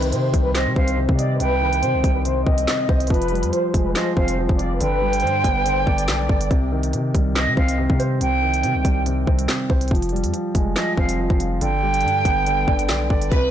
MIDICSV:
0, 0, Header, 1, 7, 480
1, 0, Start_track
1, 0, Key_signature, -3, "minor"
1, 0, Tempo, 425532
1, 1580, Time_signature, 4, 2, 24, 8
1, 15237, End_track
2, 0, Start_track
2, 0, Title_t, "Flute"
2, 0, Program_c, 0, 73
2, 623, Note_on_c, 0, 75, 93
2, 850, Note_off_c, 0, 75, 0
2, 860, Note_on_c, 0, 77, 80
2, 1088, Note_off_c, 0, 77, 0
2, 1578, Note_on_c, 0, 79, 108
2, 2494, Note_off_c, 0, 79, 0
2, 4458, Note_on_c, 0, 75, 84
2, 4687, Note_off_c, 0, 75, 0
2, 4698, Note_on_c, 0, 77, 82
2, 4927, Note_off_c, 0, 77, 0
2, 5421, Note_on_c, 0, 79, 127
2, 7296, Note_off_c, 0, 79, 0
2, 8302, Note_on_c, 0, 75, 98
2, 8529, Note_off_c, 0, 75, 0
2, 8540, Note_on_c, 0, 77, 82
2, 8768, Note_off_c, 0, 77, 0
2, 9259, Note_on_c, 0, 79, 113
2, 10174, Note_off_c, 0, 79, 0
2, 12137, Note_on_c, 0, 75, 84
2, 12366, Note_off_c, 0, 75, 0
2, 12380, Note_on_c, 0, 77, 83
2, 12608, Note_off_c, 0, 77, 0
2, 13101, Note_on_c, 0, 79, 124
2, 14976, Note_off_c, 0, 79, 0
2, 15237, End_track
3, 0, Start_track
3, 0, Title_t, "Violin section"
3, 0, Program_c, 1, 48
3, 140, Note_on_c, 1, 72, 91
3, 485, Note_off_c, 1, 72, 0
3, 497, Note_on_c, 1, 71, 88
3, 597, Note_off_c, 1, 71, 0
3, 618, Note_on_c, 1, 72, 91
3, 822, Note_off_c, 1, 72, 0
3, 860, Note_on_c, 1, 72, 85
3, 1312, Note_off_c, 1, 72, 0
3, 1336, Note_on_c, 1, 74, 86
3, 1540, Note_off_c, 1, 74, 0
3, 1582, Note_on_c, 1, 71, 112
3, 2032, Note_off_c, 1, 71, 0
3, 2058, Note_on_c, 1, 72, 86
3, 2404, Note_off_c, 1, 72, 0
3, 2428, Note_on_c, 1, 71, 76
3, 2523, Note_off_c, 1, 71, 0
3, 2535, Note_on_c, 1, 72, 87
3, 2740, Note_off_c, 1, 72, 0
3, 2782, Note_on_c, 1, 75, 84
3, 3458, Note_off_c, 1, 75, 0
3, 3504, Note_on_c, 1, 71, 114
3, 3953, Note_off_c, 1, 71, 0
3, 3985, Note_on_c, 1, 72, 86
3, 4328, Note_off_c, 1, 72, 0
3, 4346, Note_on_c, 1, 71, 84
3, 4442, Note_off_c, 1, 71, 0
3, 4454, Note_on_c, 1, 72, 91
3, 4659, Note_off_c, 1, 72, 0
3, 4694, Note_on_c, 1, 72, 78
3, 5148, Note_off_c, 1, 72, 0
3, 5178, Note_on_c, 1, 74, 80
3, 5381, Note_off_c, 1, 74, 0
3, 5417, Note_on_c, 1, 71, 101
3, 5869, Note_off_c, 1, 71, 0
3, 5897, Note_on_c, 1, 72, 89
3, 6244, Note_off_c, 1, 72, 0
3, 6271, Note_on_c, 1, 71, 78
3, 6365, Note_off_c, 1, 71, 0
3, 6376, Note_on_c, 1, 72, 81
3, 6581, Note_off_c, 1, 72, 0
3, 6618, Note_on_c, 1, 74, 78
3, 7296, Note_off_c, 1, 74, 0
3, 15018, Note_on_c, 1, 71, 107
3, 15237, Note_off_c, 1, 71, 0
3, 15237, End_track
4, 0, Start_track
4, 0, Title_t, "String section"
4, 0, Program_c, 2, 48
4, 15021, Note_on_c, 2, 48, 79
4, 15021, Note_on_c, 2, 55, 71
4, 15021, Note_on_c, 2, 63, 72
4, 15021, Note_on_c, 2, 67, 86
4, 15237, Note_off_c, 2, 48, 0
4, 15237, Note_off_c, 2, 55, 0
4, 15237, Note_off_c, 2, 63, 0
4, 15237, Note_off_c, 2, 67, 0
4, 15237, End_track
5, 0, Start_track
5, 0, Title_t, "Grand piano"
5, 0, Program_c, 3, 0
5, 0, Control_c, 3, 64, 127
5, 0, Note_on_c, 3, 48, 97
5, 0, Note_on_c, 3, 51, 92
5, 123, Note_off_c, 3, 48, 0
5, 140, Note_on_c, 3, 48, 87
5, 383, Note_on_c, 3, 55, 82
5, 609, Note_off_c, 3, 48, 0
5, 626, Note_on_c, 3, 48, 82
5, 862, Note_on_c, 3, 60, 88
5, 1082, Note_off_c, 3, 48, 0
5, 1098, Note_on_c, 3, 48, 91
5, 1099, Note_off_c, 3, 51, 0
5, 1338, Note_on_c, 3, 75, 95
5, 1562, Note_off_c, 3, 48, 0
5, 1579, Note_on_c, 3, 48, 90
5, 1582, Note_off_c, 3, 55, 0
5, 1820, Note_on_c, 3, 51, 78
5, 2042, Note_off_c, 3, 48, 0
5, 2058, Note_on_c, 3, 48, 81
5, 2061, Note_off_c, 3, 60, 0
5, 2301, Note_on_c, 3, 55, 81
5, 2523, Note_off_c, 3, 48, 0
5, 2539, Note_off_c, 3, 75, 0
5, 2540, Note_on_c, 3, 48, 94
5, 2782, Note_on_c, 3, 60, 90
5, 3000, Note_off_c, 3, 48, 0
5, 3016, Note_on_c, 3, 48, 75
5, 3020, Note_off_c, 3, 51, 0
5, 3260, Note_on_c, 3, 72, 88
5, 3498, Note_off_c, 3, 48, 0
5, 3500, Note_off_c, 3, 72, 0
5, 3501, Note_off_c, 3, 55, 0
5, 3501, Note_off_c, 3, 60, 0
5, 3505, Note_on_c, 3, 53, 97
5, 3513, Control_c, 3, 64, 0
5, 3679, Control_c, 3, 64, 127
5, 3743, Note_on_c, 3, 55, 82
5, 3959, Note_off_c, 3, 53, 0
5, 3976, Note_on_c, 3, 53, 83
5, 4221, Note_on_c, 3, 56, 83
5, 4444, Note_off_c, 3, 53, 0
5, 4461, Note_on_c, 3, 53, 97
5, 4702, Note_on_c, 3, 60, 85
5, 4927, Note_off_c, 3, 53, 0
5, 4942, Note_off_c, 3, 55, 0
5, 4944, Note_on_c, 3, 53, 91
5, 5180, Note_on_c, 3, 65, 89
5, 5419, Note_on_c, 3, 50, 96
5, 5420, Note_off_c, 3, 56, 0
5, 5420, Note_off_c, 3, 65, 0
5, 5421, Note_off_c, 3, 60, 0
5, 5422, Note_off_c, 3, 53, 0
5, 5436, Control_c, 3, 64, 0
5, 5653, Control_c, 3, 64, 127
5, 5659, Note_on_c, 3, 55, 83
5, 5880, Note_off_c, 3, 50, 0
5, 5897, Note_on_c, 3, 50, 84
5, 6137, Note_on_c, 3, 59, 87
5, 6363, Note_off_c, 3, 50, 0
5, 6380, Note_on_c, 3, 50, 82
5, 6613, Note_on_c, 3, 62, 82
5, 6846, Note_off_c, 3, 50, 0
5, 6859, Note_off_c, 3, 55, 0
5, 6863, Note_on_c, 3, 50, 82
5, 7099, Note_on_c, 3, 74, 92
5, 7337, Note_off_c, 3, 62, 0
5, 7338, Note_off_c, 3, 59, 0
5, 7340, Note_off_c, 3, 74, 0
5, 7340, Note_on_c, 3, 48, 98
5, 7341, Note_off_c, 3, 50, 0
5, 7354, Control_c, 3, 64, 0
5, 7518, Control_c, 3, 64, 127
5, 7580, Note_on_c, 3, 51, 90
5, 7804, Note_off_c, 3, 48, 0
5, 7821, Note_on_c, 3, 48, 85
5, 8066, Note_on_c, 3, 55, 82
5, 8291, Note_off_c, 3, 48, 0
5, 8308, Note_on_c, 3, 48, 82
5, 8543, Note_on_c, 3, 60, 87
5, 8762, Note_off_c, 3, 48, 0
5, 8779, Note_on_c, 3, 48, 93
5, 8780, Note_off_c, 3, 51, 0
5, 9019, Note_on_c, 3, 72, 96
5, 9243, Note_off_c, 3, 48, 0
5, 9260, Note_on_c, 3, 48, 92
5, 9263, Note_off_c, 3, 55, 0
5, 9499, Note_on_c, 3, 51, 77
5, 9722, Note_off_c, 3, 48, 0
5, 9738, Note_on_c, 3, 48, 80
5, 9741, Note_off_c, 3, 60, 0
5, 9982, Note_on_c, 3, 55, 82
5, 10204, Note_off_c, 3, 48, 0
5, 10219, Note_off_c, 3, 72, 0
5, 10221, Note_on_c, 3, 48, 95
5, 10462, Note_on_c, 3, 60, 86
5, 10679, Note_off_c, 3, 48, 0
5, 10696, Note_on_c, 3, 48, 78
5, 10700, Note_off_c, 3, 51, 0
5, 10937, Note_on_c, 3, 72, 87
5, 11178, Note_off_c, 3, 48, 0
5, 11179, Note_off_c, 3, 72, 0
5, 11181, Note_off_c, 3, 55, 0
5, 11181, Note_off_c, 3, 60, 0
5, 11183, Note_on_c, 3, 53, 94
5, 11195, Control_c, 3, 64, 0
5, 11397, Control_c, 3, 64, 127
5, 11421, Note_on_c, 3, 55, 82
5, 11636, Note_off_c, 3, 53, 0
5, 11653, Note_on_c, 3, 53, 83
5, 11899, Note_on_c, 3, 56, 84
5, 12122, Note_off_c, 3, 53, 0
5, 12139, Note_on_c, 3, 53, 93
5, 12381, Note_on_c, 3, 60, 85
5, 12607, Note_off_c, 3, 53, 0
5, 12621, Note_off_c, 3, 55, 0
5, 12624, Note_on_c, 3, 53, 89
5, 12860, Note_on_c, 3, 65, 85
5, 13100, Note_off_c, 3, 56, 0
5, 13100, Note_off_c, 3, 60, 0
5, 13100, Note_off_c, 3, 65, 0
5, 13101, Note_on_c, 3, 50, 97
5, 13102, Note_off_c, 3, 53, 0
5, 13118, Control_c, 3, 64, 0
5, 13290, Control_c, 3, 64, 127
5, 13339, Note_on_c, 3, 55, 81
5, 13561, Note_off_c, 3, 50, 0
5, 13578, Note_on_c, 3, 50, 83
5, 13818, Note_on_c, 3, 59, 85
5, 14045, Note_off_c, 3, 50, 0
5, 14062, Note_on_c, 3, 50, 84
5, 14294, Note_on_c, 3, 62, 80
5, 14526, Note_off_c, 3, 50, 0
5, 14540, Note_off_c, 3, 55, 0
5, 14543, Note_on_c, 3, 50, 83
5, 14778, Note_on_c, 3, 74, 92
5, 15017, Note_off_c, 3, 62, 0
5, 15019, Note_off_c, 3, 59, 0
5, 15019, Note_off_c, 3, 74, 0
5, 15019, Note_on_c, 3, 48, 97
5, 15022, Note_off_c, 3, 50, 0
5, 15037, Control_c, 3, 64, 0
5, 15237, Note_off_c, 3, 48, 0
5, 15237, End_track
6, 0, Start_track
6, 0, Title_t, "808-style bass"
6, 0, Program_c, 4, 38
6, 0, Note_on_c, 4, 36, 101
6, 139, Note_on_c, 4, 48, 96
6, 156, Note_off_c, 4, 36, 0
6, 368, Note_off_c, 4, 48, 0
6, 380, Note_on_c, 4, 36, 105
6, 746, Note_on_c, 4, 48, 100
6, 763, Note_off_c, 4, 36, 0
6, 854, Note_off_c, 4, 48, 0
6, 860, Note_on_c, 4, 36, 107
6, 1213, Note_off_c, 4, 36, 0
6, 1227, Note_on_c, 4, 48, 106
6, 1566, Note_off_c, 4, 48, 0
6, 1580, Note_on_c, 4, 36, 98
6, 2060, Note_on_c, 4, 48, 95
6, 2077, Note_off_c, 4, 36, 0
6, 2188, Note_on_c, 4, 36, 105
6, 2205, Note_off_c, 4, 48, 0
6, 2295, Note_off_c, 4, 36, 0
6, 2300, Note_on_c, 4, 36, 98
6, 2761, Note_off_c, 4, 36, 0
6, 2781, Note_on_c, 4, 36, 103
6, 3011, Note_off_c, 4, 36, 0
6, 3260, Note_on_c, 4, 36, 107
6, 3490, Note_off_c, 4, 36, 0
6, 3501, Note_on_c, 4, 29, 106
6, 3867, Note_on_c, 4, 41, 101
6, 3884, Note_off_c, 4, 29, 0
6, 3974, Note_off_c, 4, 41, 0
6, 4220, Note_on_c, 4, 29, 104
6, 4451, Note_off_c, 4, 29, 0
6, 4700, Note_on_c, 4, 29, 107
6, 5053, Note_off_c, 4, 29, 0
6, 5068, Note_on_c, 4, 29, 103
6, 5406, Note_off_c, 4, 29, 0
6, 5420, Note_on_c, 4, 31, 101
6, 5901, Note_on_c, 4, 43, 97
6, 5918, Note_off_c, 4, 31, 0
6, 6129, Note_off_c, 4, 43, 0
6, 6140, Note_on_c, 4, 31, 98
6, 6601, Note_off_c, 4, 31, 0
6, 6621, Note_on_c, 4, 31, 106
6, 6860, Note_on_c, 4, 35, 96
6, 6877, Note_off_c, 4, 31, 0
6, 7088, Note_off_c, 4, 35, 0
6, 7099, Note_on_c, 4, 31, 103
6, 7330, Note_off_c, 4, 31, 0
6, 7340, Note_on_c, 4, 36, 98
6, 7820, Note_on_c, 4, 48, 98
6, 7837, Note_off_c, 4, 36, 0
6, 8048, Note_off_c, 4, 48, 0
6, 8060, Note_on_c, 4, 36, 102
6, 8427, Note_on_c, 4, 48, 99
6, 8444, Note_off_c, 4, 36, 0
6, 8534, Note_off_c, 4, 48, 0
6, 8541, Note_on_c, 4, 36, 105
6, 8893, Note_off_c, 4, 36, 0
6, 8907, Note_on_c, 4, 48, 103
6, 9246, Note_off_c, 4, 48, 0
6, 9260, Note_on_c, 4, 36, 101
6, 9740, Note_on_c, 4, 48, 99
6, 9757, Note_off_c, 4, 36, 0
6, 9867, Note_on_c, 4, 36, 102
6, 9884, Note_off_c, 4, 48, 0
6, 9974, Note_off_c, 4, 36, 0
6, 9980, Note_on_c, 4, 36, 104
6, 10441, Note_off_c, 4, 36, 0
6, 10460, Note_on_c, 4, 36, 106
6, 10691, Note_off_c, 4, 36, 0
6, 10939, Note_on_c, 4, 36, 103
6, 11170, Note_off_c, 4, 36, 0
6, 11180, Note_on_c, 4, 29, 104
6, 11548, Note_on_c, 4, 41, 101
6, 11565, Note_off_c, 4, 29, 0
6, 11655, Note_off_c, 4, 41, 0
6, 11899, Note_on_c, 4, 29, 102
6, 12130, Note_off_c, 4, 29, 0
6, 12380, Note_on_c, 4, 29, 104
6, 12733, Note_off_c, 4, 29, 0
6, 12747, Note_on_c, 4, 29, 103
6, 13086, Note_off_c, 4, 29, 0
6, 13100, Note_on_c, 4, 31, 101
6, 13580, Note_on_c, 4, 43, 97
6, 13597, Note_off_c, 4, 31, 0
6, 13808, Note_off_c, 4, 43, 0
6, 13820, Note_on_c, 4, 31, 103
6, 14281, Note_off_c, 4, 31, 0
6, 14300, Note_on_c, 4, 31, 104
6, 14540, Note_on_c, 4, 35, 99
6, 14557, Note_off_c, 4, 31, 0
6, 14768, Note_off_c, 4, 35, 0
6, 14779, Note_on_c, 4, 31, 101
6, 15010, Note_off_c, 4, 31, 0
6, 15020, Note_on_c, 4, 36, 103
6, 15237, Note_off_c, 4, 36, 0
6, 15237, End_track
7, 0, Start_track
7, 0, Title_t, "Drums"
7, 27, Note_on_c, 9, 42, 66
7, 140, Note_off_c, 9, 42, 0
7, 140, Note_on_c, 9, 42, 81
7, 253, Note_off_c, 9, 42, 0
7, 380, Note_on_c, 9, 36, 98
7, 380, Note_on_c, 9, 42, 88
7, 492, Note_off_c, 9, 36, 0
7, 493, Note_off_c, 9, 42, 0
7, 620, Note_on_c, 9, 38, 116
7, 620, Note_on_c, 9, 42, 86
7, 632, Note_on_c, 9, 39, 90
7, 733, Note_off_c, 9, 38, 0
7, 733, Note_off_c, 9, 42, 0
7, 745, Note_off_c, 9, 39, 0
7, 860, Note_on_c, 9, 36, 91
7, 973, Note_off_c, 9, 36, 0
7, 988, Note_on_c, 9, 42, 88
7, 1101, Note_off_c, 9, 42, 0
7, 1227, Note_on_c, 9, 36, 96
7, 1340, Note_off_c, 9, 36, 0
7, 1340, Note_on_c, 9, 42, 81
7, 1453, Note_off_c, 9, 42, 0
7, 1581, Note_on_c, 9, 42, 86
7, 1693, Note_off_c, 9, 42, 0
7, 1948, Note_on_c, 9, 42, 67
7, 2060, Note_off_c, 9, 42, 0
7, 2060, Note_on_c, 9, 42, 86
7, 2173, Note_off_c, 9, 42, 0
7, 2300, Note_on_c, 9, 36, 99
7, 2300, Note_on_c, 9, 42, 87
7, 2413, Note_off_c, 9, 36, 0
7, 2413, Note_off_c, 9, 42, 0
7, 2540, Note_on_c, 9, 42, 83
7, 2653, Note_off_c, 9, 42, 0
7, 2781, Note_on_c, 9, 36, 91
7, 2893, Note_off_c, 9, 36, 0
7, 2908, Note_on_c, 9, 42, 90
7, 3021, Note_off_c, 9, 42, 0
7, 3021, Note_on_c, 9, 38, 122
7, 3021, Note_on_c, 9, 42, 86
7, 3034, Note_on_c, 9, 39, 95
7, 3134, Note_off_c, 9, 38, 0
7, 3134, Note_off_c, 9, 42, 0
7, 3146, Note_off_c, 9, 39, 0
7, 3260, Note_on_c, 9, 36, 106
7, 3373, Note_off_c, 9, 36, 0
7, 3388, Note_on_c, 9, 42, 70
7, 3463, Note_off_c, 9, 42, 0
7, 3463, Note_on_c, 9, 42, 66
7, 3500, Note_on_c, 9, 36, 104
7, 3543, Note_off_c, 9, 42, 0
7, 3543, Note_on_c, 9, 42, 58
7, 3613, Note_off_c, 9, 36, 0
7, 3628, Note_off_c, 9, 42, 0
7, 3628, Note_on_c, 9, 42, 55
7, 3704, Note_off_c, 9, 42, 0
7, 3704, Note_on_c, 9, 42, 49
7, 3784, Note_off_c, 9, 42, 0
7, 3784, Note_on_c, 9, 42, 42
7, 3868, Note_off_c, 9, 42, 0
7, 3868, Note_on_c, 9, 42, 63
7, 3981, Note_off_c, 9, 42, 0
7, 3981, Note_on_c, 9, 42, 84
7, 4094, Note_off_c, 9, 42, 0
7, 4220, Note_on_c, 9, 36, 97
7, 4221, Note_on_c, 9, 42, 88
7, 4333, Note_off_c, 9, 36, 0
7, 4334, Note_off_c, 9, 42, 0
7, 4461, Note_on_c, 9, 38, 113
7, 4461, Note_on_c, 9, 42, 85
7, 4473, Note_on_c, 9, 39, 92
7, 4573, Note_off_c, 9, 38, 0
7, 4574, Note_off_c, 9, 42, 0
7, 4586, Note_off_c, 9, 39, 0
7, 4701, Note_on_c, 9, 36, 89
7, 4813, Note_off_c, 9, 36, 0
7, 4828, Note_on_c, 9, 42, 93
7, 4941, Note_off_c, 9, 42, 0
7, 5068, Note_on_c, 9, 36, 96
7, 5180, Note_off_c, 9, 36, 0
7, 5180, Note_on_c, 9, 42, 80
7, 5293, Note_off_c, 9, 42, 0
7, 5420, Note_on_c, 9, 42, 88
7, 5533, Note_off_c, 9, 42, 0
7, 5787, Note_on_c, 9, 42, 68
7, 5863, Note_off_c, 9, 42, 0
7, 5863, Note_on_c, 9, 42, 53
7, 5943, Note_off_c, 9, 42, 0
7, 5943, Note_on_c, 9, 42, 41
7, 6056, Note_off_c, 9, 42, 0
7, 6140, Note_on_c, 9, 36, 99
7, 6141, Note_on_c, 9, 42, 86
7, 6253, Note_off_c, 9, 36, 0
7, 6254, Note_off_c, 9, 42, 0
7, 6381, Note_on_c, 9, 42, 84
7, 6494, Note_off_c, 9, 42, 0
7, 6621, Note_on_c, 9, 36, 85
7, 6733, Note_off_c, 9, 36, 0
7, 6748, Note_on_c, 9, 42, 86
7, 6860, Note_off_c, 9, 42, 0
7, 6860, Note_on_c, 9, 38, 121
7, 6860, Note_on_c, 9, 42, 86
7, 6873, Note_on_c, 9, 39, 100
7, 6973, Note_off_c, 9, 38, 0
7, 6973, Note_off_c, 9, 42, 0
7, 6985, Note_off_c, 9, 39, 0
7, 7099, Note_on_c, 9, 36, 101
7, 7212, Note_off_c, 9, 36, 0
7, 7227, Note_on_c, 9, 42, 68
7, 7340, Note_off_c, 9, 42, 0
7, 7340, Note_on_c, 9, 36, 105
7, 7340, Note_on_c, 9, 42, 41
7, 7453, Note_off_c, 9, 36, 0
7, 7453, Note_off_c, 9, 42, 0
7, 7707, Note_on_c, 9, 42, 65
7, 7820, Note_off_c, 9, 42, 0
7, 7820, Note_on_c, 9, 42, 85
7, 7933, Note_off_c, 9, 42, 0
7, 8060, Note_on_c, 9, 36, 100
7, 8060, Note_on_c, 9, 42, 90
7, 8173, Note_off_c, 9, 36, 0
7, 8173, Note_off_c, 9, 42, 0
7, 8300, Note_on_c, 9, 38, 116
7, 8300, Note_on_c, 9, 42, 82
7, 8313, Note_on_c, 9, 39, 93
7, 8413, Note_off_c, 9, 38, 0
7, 8413, Note_off_c, 9, 42, 0
7, 8425, Note_off_c, 9, 39, 0
7, 8541, Note_on_c, 9, 36, 89
7, 8653, Note_off_c, 9, 36, 0
7, 8668, Note_on_c, 9, 42, 90
7, 8781, Note_off_c, 9, 42, 0
7, 8908, Note_on_c, 9, 36, 96
7, 9020, Note_off_c, 9, 36, 0
7, 9021, Note_on_c, 9, 42, 80
7, 9134, Note_off_c, 9, 42, 0
7, 9261, Note_on_c, 9, 42, 84
7, 9374, Note_off_c, 9, 42, 0
7, 9628, Note_on_c, 9, 42, 66
7, 9740, Note_off_c, 9, 42, 0
7, 9740, Note_on_c, 9, 42, 83
7, 9853, Note_off_c, 9, 42, 0
7, 9980, Note_on_c, 9, 36, 98
7, 9981, Note_on_c, 9, 42, 86
7, 10093, Note_off_c, 9, 36, 0
7, 10093, Note_off_c, 9, 42, 0
7, 10221, Note_on_c, 9, 42, 84
7, 10334, Note_off_c, 9, 42, 0
7, 10460, Note_on_c, 9, 36, 89
7, 10573, Note_off_c, 9, 36, 0
7, 10588, Note_on_c, 9, 42, 90
7, 10700, Note_off_c, 9, 42, 0
7, 10700, Note_on_c, 9, 38, 125
7, 10700, Note_on_c, 9, 42, 84
7, 10713, Note_on_c, 9, 39, 95
7, 10813, Note_off_c, 9, 38, 0
7, 10813, Note_off_c, 9, 42, 0
7, 10826, Note_off_c, 9, 39, 0
7, 10939, Note_on_c, 9, 36, 102
7, 11052, Note_off_c, 9, 36, 0
7, 11067, Note_on_c, 9, 42, 68
7, 11142, Note_off_c, 9, 42, 0
7, 11142, Note_on_c, 9, 42, 64
7, 11180, Note_on_c, 9, 36, 107
7, 11223, Note_off_c, 9, 42, 0
7, 11223, Note_on_c, 9, 42, 59
7, 11293, Note_off_c, 9, 36, 0
7, 11307, Note_off_c, 9, 42, 0
7, 11307, Note_on_c, 9, 42, 54
7, 11382, Note_off_c, 9, 42, 0
7, 11382, Note_on_c, 9, 42, 49
7, 11462, Note_off_c, 9, 42, 0
7, 11462, Note_on_c, 9, 42, 42
7, 11547, Note_off_c, 9, 42, 0
7, 11547, Note_on_c, 9, 42, 68
7, 11659, Note_off_c, 9, 42, 0
7, 11659, Note_on_c, 9, 42, 84
7, 11772, Note_off_c, 9, 42, 0
7, 11899, Note_on_c, 9, 36, 98
7, 11899, Note_on_c, 9, 42, 88
7, 12012, Note_off_c, 9, 36, 0
7, 12012, Note_off_c, 9, 42, 0
7, 12139, Note_on_c, 9, 38, 115
7, 12139, Note_on_c, 9, 42, 89
7, 12151, Note_on_c, 9, 39, 90
7, 12252, Note_off_c, 9, 38, 0
7, 12252, Note_off_c, 9, 42, 0
7, 12264, Note_off_c, 9, 39, 0
7, 12380, Note_on_c, 9, 36, 88
7, 12492, Note_off_c, 9, 36, 0
7, 12507, Note_on_c, 9, 42, 93
7, 12620, Note_off_c, 9, 42, 0
7, 12747, Note_on_c, 9, 36, 97
7, 12860, Note_off_c, 9, 36, 0
7, 12860, Note_on_c, 9, 42, 81
7, 12972, Note_off_c, 9, 42, 0
7, 13100, Note_on_c, 9, 42, 86
7, 13213, Note_off_c, 9, 42, 0
7, 13467, Note_on_c, 9, 42, 66
7, 13542, Note_off_c, 9, 42, 0
7, 13542, Note_on_c, 9, 42, 52
7, 13622, Note_off_c, 9, 42, 0
7, 13622, Note_on_c, 9, 42, 40
7, 13735, Note_off_c, 9, 42, 0
7, 13820, Note_on_c, 9, 36, 100
7, 13820, Note_on_c, 9, 42, 89
7, 13932, Note_off_c, 9, 36, 0
7, 13933, Note_off_c, 9, 42, 0
7, 14060, Note_on_c, 9, 42, 86
7, 14173, Note_off_c, 9, 42, 0
7, 14300, Note_on_c, 9, 36, 91
7, 14413, Note_off_c, 9, 36, 0
7, 14427, Note_on_c, 9, 42, 88
7, 14539, Note_off_c, 9, 42, 0
7, 14539, Note_on_c, 9, 42, 87
7, 14540, Note_on_c, 9, 38, 117
7, 14552, Note_on_c, 9, 39, 97
7, 14652, Note_off_c, 9, 38, 0
7, 14652, Note_off_c, 9, 42, 0
7, 14665, Note_off_c, 9, 39, 0
7, 14779, Note_on_c, 9, 36, 100
7, 14892, Note_off_c, 9, 36, 0
7, 14907, Note_on_c, 9, 42, 67
7, 15020, Note_off_c, 9, 42, 0
7, 15020, Note_on_c, 9, 36, 109
7, 15020, Note_on_c, 9, 42, 42
7, 15133, Note_off_c, 9, 36, 0
7, 15133, Note_off_c, 9, 42, 0
7, 15237, End_track
0, 0, End_of_file